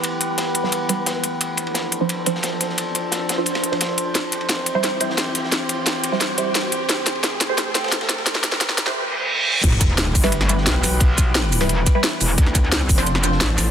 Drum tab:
CC |--------------------------------|--------------------------------|--------------------------------|--------------------------------|
RD |x---x---x---x---x---x---x---x---|x---x-x-x---x---x---x---x---x---|x---x---x---x---x-x---x-x---x---|x---x-x-x---x---x---x---x---x---|
HH |x---x---x---x---x---x---x---x---|x---x---x---x---x---x---x---x---|x---x---x---x---x---x---x---x---|x---x---x---x---x---x---x---x---|
SH |--------------------------------|--------------------------------|--------------------------------|--------------------------------|
SD |--------o-----o---------o-------|--------o-------------o-o---o-o-|--------o---o---o-o---o-o-------|o-------o-------o-----o-o---o-o-|
BD |--------------------------------|--------------------------------|--------------------------------|--------------------------------|

CC |--------------------------------|--------------------------------|--------------------------------|x-------------------------------|
RD |x---x---x---x---x---x---x---x---|x---x-x-x---x---x---x-xxx-x---x-|x---x---x---x-------------------|x---x-x-x---x---x---x---x---x---|
HH |x---x---x---x---x---x---x---x---|x---x---x---x---x---x---x---x---|x---x---x---x-------------------|x---x---x---o---x---x---x---o---|
SH |--------------------------------|--------------------------------|--------------------------------|----x-------x-------x-------x---|
SD |o-------o-----o-o-------o-------|o---o---o---o---o---o-ooo-o-o-o-|o-o-o-o-o-o-o-o-----------------|--o-----o-----o---o---o-o---o---|
BD |--------------------------------|--------------------------------|--------------------------------|o---o-------o-------------------|

CC |--------------------------------|--------------------------------|
RD |x---x---x---x---x---x---x---x---|x---x-x-x---x---x---x---x---x---|
HH |x---x---x---o---x---x---x---o---|x---x---x---o---x---x---x---o---|
SH |----x-------x-------x-------x---|----x-------x-------x-------x---|
SD |--------o-----o---------o-------|--o-----o-----o---o---o-o---o---|
BD |o---o---------------o-----------|o---o-------o-------------------|